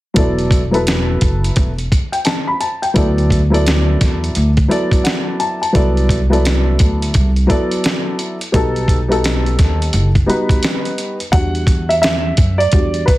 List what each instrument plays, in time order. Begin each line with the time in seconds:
0.14 upright bass E1, upright piano F#3 B3 E4 A4 D5, kick, closed hi-hat
0.39 closed hi-hat
0.51 kick, closed hi-hat
0.71 upright piano F#3 B3 E4 A4 B4, closed hi-hat
0.87 snare, closed hi-hat
1.21 upright bass F#1, kick, closed hi-hat
1.44 closed hi-hat
1.56 upright bass E1, kick, closed hi-hat
1.78 closed hi-hat
1.92 kick, closed hi-hat
2.12 upright piano G5, closed hi-hat
2.25 upright piano A5, snare, closed hi-hat
2.47 upright piano B5
2.60 upright piano A5, closed hi-hat
2.82 upright piano G5, closed hi-hat
2.94 upright bass D2, upright piano F#3 B3 E4 A4 D5, kick, closed hi-hat
3.18 closed hi-hat
3.30 kick, closed hi-hat
3.50 upright piano F#3 B3 E4 A4 D5
3.54 closed hi-hat
3.67 snare, closed hi-hat
4.01 upright bass E2, kick, snare, closed hi-hat
4.24 closed hi-hat
4.35 upright bass D2, closed hi-hat
4.57 kick, closed hi-hat
4.68 upright piano F#3 B3 E4 A4 D5, closed hi-hat
4.91 kick, closed hi-hat
5.04 upright piano F#5, snare, closed hi-hat
5.40 upright piano A5, closed hi-hat
5.62 upright piano A5, closed hi-hat
5.72 upright bass C2, upright piano F#3 B3 E4 A4 D5, kick, closed hi-hat
5.97 closed hi-hat
6.09 kick, closed hi-hat
6.30 upright piano F#3 B3 E4 A4 D5, closed hi-hat
6.45 snare, closed hi-hat
6.79 upright bass D2, kick, closed hi-hat
7.02 closed hi-hat
7.14 upright bass C2, kick, closed hi-hat
7.36 closed hi-hat
7.47 upright piano F#3 B3 E4 A4 D5, kick, closed hi-hat
7.71 closed hi-hat
7.84 snare, closed hi-hat
8.19 closed hi-hat
8.41 closed hi-hat
8.52 upright bass B1, upright piano G3 B3 D#4 F#4 A4, kick, closed hi-hat
8.76 closed hi-hat
8.88 kick, closed hi-hat
9.08 upright piano G3 B3 D#4 F#4 A4, closed hi-hat
9.24 snare, closed hi-hat
9.46 closed hi-hat
9.59 upright bass D#2, kick, snare, closed hi-hat
9.82 closed hi-hat
9.93 upright bass F#1, closed hi-hat
10.15 kick, closed hi-hat
10.26 upright piano G3 B3 D#4 F#4 B4, closed hi-hat
10.49 kick, closed hi-hat
10.63 snare, closed hi-hat
10.85 closed hi-hat
10.98 closed hi-hat
11.20 closed hi-hat
11.32 upright bass E2, upright piano G3 D4 F#4 F#5, kick, closed hi-hat
11.55 closed hi-hat
11.67 kick, closed hi-hat
11.89 upright piano E5, closed hi-hat
12.02 upright piano E5, snare, closed hi-hat
12.37 upright bass F#2, kick, closed hi-hat
12.58 upright piano D5, closed hi-hat
12.72 upright bass E2, upright piano G3 D4 F#4, kick, closed hi-hat
12.94 closed hi-hat
13.06 upright piano B4, kick, closed hi-hat